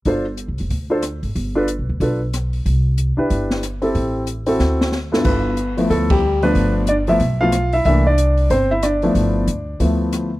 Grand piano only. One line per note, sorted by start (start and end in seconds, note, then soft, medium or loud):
0.06 0.24 D4 medium
0.06 0.24 F4 soft
0.06 0.24 A4 soft
0.06 0.25 C5 medium
0.90 1.01 D4 medium
0.90 1.02 F4 soft
0.90 1.02 A4 medium
0.90 1.02 C5 medium
1.55 1.67 D4 medium
1.55 1.67 F4 medium
1.55 1.67 A4 medium
1.55 1.68 B4 medium
2.01 2.19 D4 soft
2.01 2.19 F4 soft
2.01 2.19 A4 soft
2.01 2.20 B4 soft
3.17 3.60 D4 soft
3.17 3.60 E4 soft
3.17 3.61 G4 soft
3.17 3.61 B4 medium
3.82 4.25 C4 soft
3.82 4.25 E4 soft
3.82 4.25 G4 soft
3.82 4.26 A4 medium
4.47 4.90 C4 medium
4.47 4.90 E4 soft
4.47 4.90 F#4 medium
4.47 4.90 A4 medium
5.12 5.55 G2 medium
5.12 5.26 B3 soft
5.12 5.55 E4 soft
5.12 5.56 F4 soft
5.12 5.56 A4 medium
5.25 5.75 B3 medium
5.25 5.74 B4 medium
5.77 6.20 F3 medium
5.77 5.91 A3 medium
5.77 6.20 B3 medium
5.77 6.21 E4 medium
5.90 6.10 A3 medium
5.90 6.11 A4 medium
6.11 6.42 G3 medium
6.11 6.41 G4 medium
6.43 6.85 F3 medium
6.43 6.85 A3 medium
6.43 6.86 B3 medium
6.43 6.86 D4 medium
6.43 6.73 B4 medium
6.89 6.96 D4 medium
6.89 6.94 D5 medium
7.08 7.19 F3 medium
7.08 7.19 A3 medium
7.08 7.20 B3 medium
7.08 7.20 E4 medium
7.08 7.39 E5 medium
7.41 7.52 F3 medium
7.41 7.52 A3 medium
7.41 7.52 B3 soft
7.41 7.52 E4 medium
7.41 7.72 F4 medium
7.41 7.74 F5 loud
7.73 7.86 E4 medium
7.73 7.84 E5 medium
7.86 8.04 E3 medium
7.86 8.04 A3 soft
7.86 8.04 A#3 soft
7.86 8.05 D4 medium
7.86 8.05 E4 medium
7.86 8.04 E5 medium
8.07 8.49 D4 medium
8.07 8.48 D5 medium
8.51 8.70 C4 medium
8.51 8.71 C5 medium
8.71 8.83 E4 medium
8.71 8.84 E5 medium
8.83 9.77 D4 medium
8.83 9.77 D5 medium
9.03 9.46 F3 medium
9.03 9.46 A3 medium
9.03 9.46 B3 soft
9.03 9.46 E4 medium
9.80 10.29 F3 soft
9.80 10.29 A3 soft
9.80 10.29 B3 soft
9.80 10.30 E4 soft